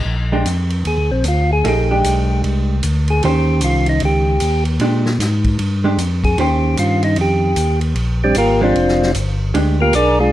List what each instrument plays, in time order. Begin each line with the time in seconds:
0.05 tonewheel organ A#1
0.32 hollow-body jazz guitar G#3 D4 G4
0.45 tonewheel organ F2, hi-hat pedal, ride
0.70 ride
0.85 tonewheel organ D#2 G#4, ride
0.98 tonewheel organ D2
1.11 tonewheel organ A#1 C4
1.24 tonewheel organ D2, hi-hat pedal, ride
1.28 tonewheel organ F4
1.53 tonewheel organ G#4
1.64 tonewheel organ A#1 G4, hollow-body jazz guitar A3 D#4 G#4, ride
1.90 hollow-body jazz guitar G#3 D4 G4
2.04 tonewheel organ B1, hi-hat pedal, ride
2.44 tonewheel organ C2, ride
2.83 tonewheel organ D2, hi-hat pedal, ride
3.08 tonewheel organ G#4, ride
3.23 tonewheel organ D#2 G4, hollow-body jazz guitar D#3 C#4 G4 C5, ride
3.61 tonewheel organ C2 F4, hi-hat pedal, ride
3.86 tonewheel organ D#4, ride
4.00 tonewheel organ C#2, ride
4.05 tonewheel organ G4
4.40 tonewheel organ D#2, hi-hat pedal, ride
4.65 ride
4.80 tonewheel organ A#2, hollow-body jazz guitar G#3 D4 G4, ride
5.06 snare
5.19 tonewheel organ G#2, snare, hi-hat pedal, ride
5.44 kick, ride
5.59 tonewheel organ G2, ride
5.84 hollow-body jazz guitar G#3 D4 G4
5.97 tonewheel organ F2, hi-hat pedal, ride
6.24 tonewheel organ G#4, kick, ride
6.38 tonewheel organ D#2 G4, hollow-body jazz guitar D#3 C#4 G4 C5, ride
6.77 tonewheel organ G2 F4, hi-hat pedal, ride
7.03 tonewheel organ D#4, ride
7.16 tonewheel organ F2, ride
7.21 tonewheel organ G4
7.56 tonewheel organ D#2, hi-hat pedal, ride
7.81 ride
7.95 tonewheel organ A#1, ride
8.23 tonewheel organ G3 C4 D4 G4
8.35 tonewheel organ G#1 A#3 F4 G4 A#4, hi-hat pedal, ride
8.61 tonewheel organ F3 C4 D4 F4, hollow-body jazz guitar G#3 D4 G4
8.76 tonewheel organ F1, ride
8.88 snare
9.02 snare
9.15 tonewheel organ G1, hi-hat pedal, ride
9.54 tonewheel organ D2, hollow-body jazz guitar G#3 D4 G4, ride
9.80 tonewheel organ A#3 F4 G4 A#4
9.93 tonewheel organ B1 D4 G#4 A#4 D5, hi-hat pedal, ride
10.20 tonewheel organ G#3 D4 F4 G#4